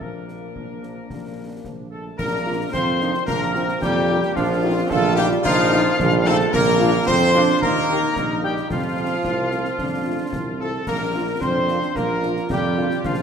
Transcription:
0.01 A#1 A#2 F3 A#3 D4 A#4, concert bass drum
0.28 snare
0.55 A#1 F3, concert bass drum
0.83 snare
1.09 A#1 G3, concert bass drum, snare
1.64 A#1 F3, concert bass drum, snare
1.91 A3 A4 A5
2.18 A#1 A#3 D4 A#4 A#5, concert bass drum, snare, crash
2.46 A#3 D4 F4
2.72 F2 C4 F4 C5 C6, concert bass drum, snare
3.00 A#3 D4 D#4 F4, snare
3.14 snare
3.27 A#1 A#3 D4 A#4 A#5, concert bass drum, snare
3.54 A#3 C4 D4 F4, snare
3.69 snare
3.81 F2 G3 A#3 G4 G5, concert bass drum, snare
4.10 A#3 D4 F4
4.23 snare
4.35 A#1 F3 D4 F4 F5, concert bass drum, snare, crash
4.63 A3 C4 D#4 F4
4.89 A#1 A3 F4 A4 A5, concert bass drum, snare
5.16 G3 A3 D#4 F4 G4 G5, snare
5.32 snare
5.43 A#1 F3 D#4 F4 F5, concert bass drum, snare
5.71 A3 D#4 F4, snare
5.86 snare
5.99 A#1 D4, concert bass drum, snare
6.25 A3 C4 D#4 F4 A4 A5
6.40 snare
6.52 A#1 A#3 A#4 A#5, concert bass drum, snare, crash
6.80 A#3 D4 F4
7.07 F2 C4 C5 C6, concert bass drum, snare
7.34 A#3 D4 F4, snare
7.49 snare
7.61 D#2 A#3 D#4 A#4 A#5, concert bass drum, snare
7.88 A#3 D#4 G4, snare
8.03 snare
8.16 A#1, concert bass drum, snare
8.43 G3 A#3 D#4 G4 G5
8.57 snare
8.69 F2 F3 C4 F4 F5, concert bass drum, snare, crash
8.98 A3 C4 F4
9.24 C2 C4, concert bass drum, snare
9.51 A3 C4 F4, snare
9.65 snare
9.77 F2 D4, concert bass drum, snare
10.07 A3 C4 F4
10.33 C2 C4, concert bass drum, snare
10.60 A3 C4 F4 A4 A5
10.87 A#1 A#3 A#4 A#5, concert bass drum, snare, crash
11.15 A#3 D4 F4
11.40 F2 C4 D4 C5 C6, concert bass drum, snare
11.68 A#3 D4 F4, snare
11.83 snare
11.95 A#1 A#3 F4 A#4 A#5, concert bass drum, snare
12.23 A#3 D4 F4, snare
12.37 snare
12.50 F2 G3 G4 G5, concert bass drum, snare
12.78 A#3 D4 F4
12.91 snare
13.04 A#1 F3 F4 F5, concert bass drum, snare, crash

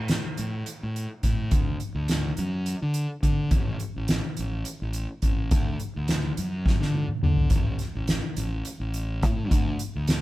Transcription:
0.00 A2
0.08 snare, closed hi-hat
0.37 A2, closed hi-hat
0.66 closed hi-hat
0.83 A2
0.96 closed hi-hat
1.23 A2, kick, snare, closed hi-hat
1.51 D2, kick, closed hi-hat
1.80 closed hi-hat
1.95 D2
2.08 snare, closed hi-hat
2.37 F#2, closed hi-hat
2.66 closed hi-hat
2.82 D3
2.94 closed hi-hat
3.23 D3, kick, closed hi-hat
3.51 A1, kick, closed hi-hat
3.80 closed hi-hat
3.96 A1
4.08 snare, closed hi-hat
4.37 A1, closed hi-hat
4.65 closed hi-hat
4.82 A1
4.93 closed hi-hat
5.22 A1, kick, closed hi-hat
5.51 D2, kick, closed hi-hat
5.80 closed hi-hat
5.96 D2
6.08 snare, closed hi-hat
6.37 F#2, closed hi-hat
6.66 kick, snare
6.81 D3, snare
6.94 high tom
7.08 mid tom
7.23 D3, mid tom
7.36 floor tom
7.50 A1, kick, closed hi-hat
7.79 snare, closed hi-hat
7.95 A1
8.07 snare, closed hi-hat
8.36 A1, closed hi-hat
8.65 closed hi-hat
8.80 A1
8.94 closed hi-hat
9.23 A2, kick, closed hi-hat
9.51 D2, kick, closed hi-hat
9.79 closed hi-hat
9.96 D2
10.07 snare, closed hi-hat

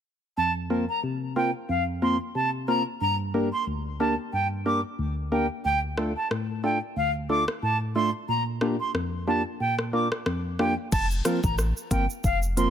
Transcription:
0.37 F2 A5
0.70 A#3 C4 F4 A#4
0.89 A#5
1.03 C3
1.36 A#3 C4 F4 A#4 G5
1.69 F2 F5
2.02 A#3 C4 F4 A#4 C6
2.35 C3 A5
2.68 A#3 C4 F4 A#4 A#5
3.01 G2 A#5
3.34 A#3 D4 G4 A#4
3.53 C6
3.67 D2
4.00 A#3 D4 G4 A#4 A5
4.33 G2 G5
4.66 A#3 D4 G4 A#4 D6
4.99 D2
5.32 A#3 D4 G4 A#4 G5
5.65 D2 G5
5.98 A3 D4 F4 A4, cross-stick
6.16 A5
6.31 A2, cross-stick
6.64 A3 D4 F4 A4 G5
6.97 D2 F5
7.29 A3 D4 F4 A4 D6
7.48 cross-stick
7.63 A2 A5
7.95 A3 D4 F4 A4 C6
8.28 A#2 A#5
8.61 A#3 D4 F4 G4, cross-stick
8.80 C6
8.94 F2, cross-stick
9.27 A#3 D4 F4 G4 A5
9.60 A#2 G5
9.79 cross-stick
9.93 A#3 D4 F4 A#4 D6
10.12 cross-stick
10.26 F2, cross-stick
10.59 A#3 D4 F4 G4 G5, cross-stick
10.92 F1 A5, kick, crash, shaker
11.11 shaker
11.25 F3 A#3 C4 F4 A#4, cross-stick, closed hi-hat, shaker
11.44 A1 A#5, kick, shaker
11.58 cross-stick, shaker
11.77 shaker
11.91 G1 F3 A#3 C4 F4 A#4 G5, kick, closed hi-hat, shaker
12.10 shaker
12.24 F1 F5, kick, shaker
12.43 shaker
12.57 F3 A#3 C4 F4 A#4 C6, closed hi-hat, shaker

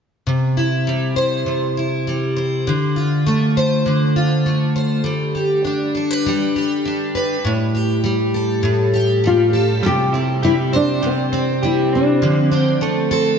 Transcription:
0.27 C3
0.57 E4
0.87 G3
1.16 C5
1.46 C3
1.77 E4
2.07 G3
2.37 C5
2.67 D3
2.96 F4
3.26 A3
3.57 C5
3.86 D3
4.16 F4
4.46 A3
4.76 C5
5.04 G3
5.35 G4
5.65 D4
5.95 A4
6.11 B4
6.26 G3
6.56 G4
6.85 D4
7.15 B4
7.45 A2
7.75 G4
8.04 G3
8.34 A4
8.63 A2
8.94 G4
9.24 G3 F4
9.53 A4
9.83 C3 G3 G4
10.13 C4 E4
10.43 G3 E4 G4
10.73 C4 D4 C5
11.02 C3 C4 G4
11.32 C4
11.63 G3 E4 G4
11.93 C4 D4
12.22 D3 F3
12.52 C4 D4
12.81 A3 A4
13.11 C4 A4

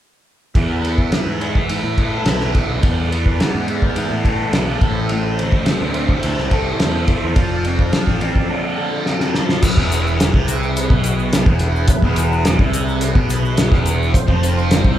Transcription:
0.54 E2 A4 B4 E5, kick, ride
0.83 B3, ride
0.98 kick
1.12 E3, snare, ride
1.26 G#2
1.41 B3, ride
1.55 kick
1.69 G#2 E4, ride
1.84 A2
1.98 A4, kick, ride
2.26 B1 B3, snare, ride
2.41 snare
2.55 E3, kick, ride
2.69 B1
2.83 E2 D5, kick, ride
3.12 B3, ride
3.26 kick
3.40 E3, snare, ride
3.55 G#2
3.68 B3, ride
3.82 kick
3.96 G#2 E4, ride
4.11 A2
4.25 A4, kick, ride
4.53 B1 B3, snare, ride
4.81 A1 A2 C5 E5, kick, ride
5.09 A2, ride
5.39 C4, ride
5.52 kick
5.66 E3, snare, ride
5.81 D2
5.94 C4, ride
6.09 kick
6.23 D2 E4, ride
6.38 C2, snare
6.51 A4, kick, ride
6.80 E2 C4, snare, ride
7.08 E3, kick, ride
7.24 E2
7.35 F1 F3 A4 D5 F5, kick, ride
7.65 C4, ride
7.79 kick
7.93 F3, snare, ride
8.07 A1, kick, snare
8.21 C4, ride
8.36 kick
8.49 D4
8.78 A4
9.06 C4, snare
9.20 snare
9.35 F3, snare
9.49 snare
9.62 E4 G#4 B4, kick, crash, shaker
9.77 E1 E2, kick
9.92 closed hi-hat, shaker
10.07 shaker
10.20 snare, closed hi-hat, shaker
10.34 C2 C3, kick
10.48 closed hi-hat, shaker
10.63 shaker
10.77 closed hi-hat, shaker
10.90 B1 B2, kick
11.04 closed hi-hat, shaker
11.19 shaker
11.33 snare, closed hi-hat, shaker
11.46 E1 E2, kick
11.59 closed hi-hat
11.76 shaker
11.88 kick, closed hi-hat, shaker
12.02 E1 E2, kick
12.16 closed hi-hat, shaker
12.32 shaker
12.45 snare, closed hi-hat, shaker
12.59 C2 C3, kick
12.73 closed hi-hat, shaker
12.89 shaker
13.01 closed hi-hat, shaker
13.15 B1 B2, kick
13.30 closed hi-hat, shaker
13.45 shaker
13.57 snare, closed hi-hat, shaker
13.71 E1 E2, kick, snare
13.86 closed hi-hat, shaker
14.02 shaker
14.13 C4 F4 C5, kick, closed hi-hat, shaker
14.27 F1 F2, kick
14.43 closed hi-hat, shaker
14.58 shaker
14.71 snare, closed hi-hat, shaker
14.83 C2 C3, kick

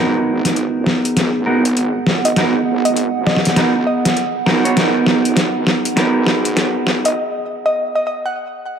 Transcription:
Already playing: G#1 B3 D#4 F#4 A#4
0.23 G#4
0.45 G#1, snare, closed hi-hat
0.56 closed hi-hat
0.71 F#5
0.86 snare
1.05 closed hi-hat
1.17 G#1, snare, closed hi-hat
1.46 G#1 B3 D#4 F#4 A#4
1.65 closed hi-hat
1.77 closed hi-hat
2.07 G#1, snare
2.25 D#5, closed hi-hat
2.36 G#1 B3 D#4 F#4 A#4, snare, closed hi-hat
2.85 G#1 D#5, closed hi-hat
2.97 closed hi-hat
3.26 G#1 D#5, snare
3.37 snare
3.45 snare, closed hi-hat
3.56 B3 D#4 F#4 A#4, snare, closed hi-hat
3.75 C#2
3.87 D#5
4.05 snare, closed hi-hat
4.17 closed hi-hat
4.46 G#1 B3 D#4 F#4 A#4, snare
4.65 B3 D#4 F#4 C#5, closed hi-hat
4.76 G#1 B3 D#4 F#4 A#4, snare, closed hi-hat
5.06 snare
5.25 G#1, closed hi-hat
5.37 snare, closed hi-hat
5.67 snare
5.85 closed hi-hat
5.96 G#1 B3 D#4 F#4 A#4, snare, closed hi-hat
6.26 G#1, snare
6.45 closed hi-hat
6.57 snare, closed hi-hat
6.87 G#1, snare
7.05 D#5, closed hi-hat
7.66 D#5
7.95 D#5
8.07 D#5
8.26 F#5

